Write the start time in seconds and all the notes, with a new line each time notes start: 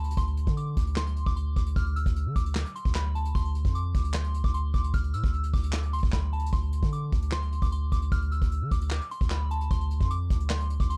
Already playing: D2 A5
0.04 closed hi-hat
0.11 closed hi-hat
0.17 D2 C6, kick, closed hi-hat
0.27 closed hi-hat
0.37 closed hi-hat
0.47 D3, kick, closed hi-hat
0.57 D6, closed hi-hat
0.77 D2, kick, closed hi-hat
0.87 closed hi-hat
0.96 C6, snare, clap
1.07 closed hi-hat
1.17 closed hi-hat
1.26 D2 D6, kick, closed hi-hat
1.36 C6, closed hi-hat
1.56 D2 D6, kick, closed hi-hat
1.66 closed hi-hat
1.76 D2 F6, kick, closed hi-hat
1.86 closed hi-hat
1.96 E6, closed hi-hat
2.06 D2, kick, closed hi-hat
2.16 closed hi-hat
2.26 D3
2.36 D2 D6, kick, closed hi-hat
2.46 closed hi-hat
2.55 snare, clap
2.66 closed hi-hat
2.76 C6, closed hi-hat
2.85 D2, kick, closed hi-hat
2.95 B5, snare, clap
3.15 A5, closed hi-hat
3.25 closed hi-hat
3.35 D2 C6, kick, closed hi-hat
3.45 closed hi-hat
3.55 closed hi-hat
3.65 F2, kick, closed hi-hat
3.75 D6, closed hi-hat
3.95 D2, kick, closed hi-hat
4.04 closed hi-hat
4.14 C6, snare, clap
4.24 closed hi-hat
4.34 closed hi-hat
4.44 D2 D6, kick, closed hi-hat
4.54 C6, closed hi-hat
4.74 D2 D6, kick, closed hi-hat
4.84 closed hi-hat
4.94 D2 F6, kick, closed hi-hat
5.04 closed hi-hat
5.14 A2 E6, closed hi-hat
5.24 D2, kick, closed hi-hat
5.34 closed hi-hat
5.44 closed hi-hat
5.54 D2 D6, kick, open hi-hat
5.63 closed hi-hat
5.73 snare, clap
5.83 closed hi-hat
5.93 C6, closed hi-hat
5.98 closed hi-hat
6.03 D2, kick, closed hi-hat
6.08 closed hi-hat
6.13 B5, kick, snare, clap
6.33 A5, closed hi-hat
6.40 closed hi-hat
6.46 closed hi-hat
6.53 D2 C6, kick, closed hi-hat
6.63 closed hi-hat
6.73 closed hi-hat
6.83 D3, kick, closed hi-hat
6.93 D6, closed hi-hat
7.12 D2, kick, closed hi-hat
7.22 closed hi-hat
7.32 C6, snare, clap
7.42 closed hi-hat
7.52 closed hi-hat
7.62 D2 D6, kick, closed hi-hat
7.72 C6, closed hi-hat
7.92 D2 D6, kick, closed hi-hat
8.02 closed hi-hat
8.12 D2 F6, kick, closed hi-hat
8.22 closed hi-hat
8.32 E6, closed hi-hat
8.42 D2, kick, closed hi-hat
8.51 closed hi-hat
8.61 D3
8.71 D2 D6, kick, closed hi-hat
8.81 closed hi-hat
8.91 snare, clap
9.01 closed hi-hat
9.11 C6, closed hi-hat
9.21 D2, kick, closed hi-hat
9.30 B5, snare, clap
9.51 A5, closed hi-hat
9.61 closed hi-hat
9.71 D2 C6, kick, closed hi-hat
9.81 closed hi-hat
9.91 closed hi-hat
10.01 F2, kick, closed hi-hat
10.10 D6, closed hi-hat
10.30 D2, kick, closed hi-hat
10.40 closed hi-hat
10.50 C6, snare, clap
10.60 closed hi-hat
10.70 closed hi-hat
10.80 D2 D6, kick, closed hi-hat
10.90 C6, closed hi-hat